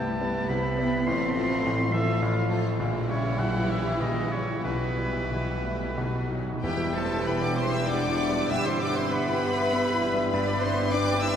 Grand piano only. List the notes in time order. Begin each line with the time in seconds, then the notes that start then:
Already playing: C2 C3 G3 B3 E4
0.21 G3 B3 E4
0.49 C2 C3
0.78 G3 B3 E4
1.07 A1 A2
1.37 F3 A3 F4
1.66 A1 A2
1.94 F3 A3 F4
2.22 A1 A2
2.50 F3 A3 F4
2.80 A#1 A#2
3.09 G3 C#4 E4
3.39 A#1 A#2
3.69 G3 C#4 E4
4.00 A#1 A#2
4.33 G3 C#4 E4
4.64 B1 B2
4.97 G3 E4
5.31 B1 B2
5.64 G3 E4
5.97 B1 B2
6.31 F#3 D#4 F#4
6.64 E2
6.84 G3
7.05 B3
7.26 E4
7.46 G4
7.67 E4
7.87 B3
8.08 B2
8.29 G3
8.50 G2
8.71 G3
8.92 B3
9.12 E4
9.33 G4
9.52 E4
9.73 B3
9.93 E3
10.14 G3
10.34 G2
10.54 G3
10.74 B3
10.94 D4
11.12 G4
11.32 D4